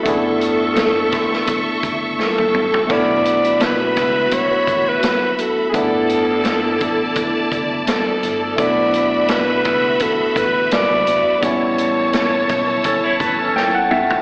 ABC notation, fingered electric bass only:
X:1
M:4/4
L:1/16
Q:"Swing 16ths" 1/4=84
K:Bm
V:1 name="Fingered electric bass" clef=bass
G,,,6 A,,,2 z2 F,,,2 z4 | B,,,6 C,,2 z2 A,,,2 z4 | G,,,6 A,,,2 z2 F,,,2 z2 G,,,2 | B,,,6 C,,2 z2 A,,,2 z F,,,2 z |
A,,,6 B,,,2 z2 A,,,2 z4 |]